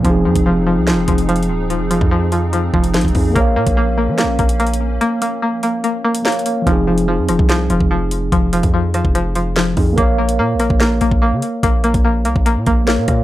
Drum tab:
HH |x--------x--------------x-----x--x--x-x-x-------|x-----x-----------x-----x--------x--x-x-x-o-----|x--------x--------------x-----x--x--x-x-x-------|x-----x-----------x-----x--------x--x-x-x-x-----|
CP |------------------------x-----------------------|------------------------------------x-----------|------------------------x-----------------------|------------------------------------x-----------|
SD |------------------------o-----------------------|------------------------------------o-----------|------------------------o-----------------------|------------------------------------o-----------|
BD |o--------o--------------------o-----------------|---------o--------------------o--------o--o-----|o--------o--------------------o-----------------|------------------------------------------------|

HH |x--------x--------x-----x-----x-----------x-----|x-----x--x--------x-----x-----x-----------o-----|x--------x--------x-----x-----x-----------x-----|x-----x--x--------x-----x-----x-----------x-----|
CP |------------------------x-----------------------|------------------------------------x-----------|------------------------x-----------------------|------------------------------------x-----------|
SD |------------------r-----o-----------------------|------------------r-----------------o-----------|------------------r-----o-----------------------|------------------------------------o-----r-----|
BD |o--------------------o-----------o--------------|o--------o-----------o--------------------o-----|o--------------------o-----------o--------------|o--------o-----------o--------o-----------o-----|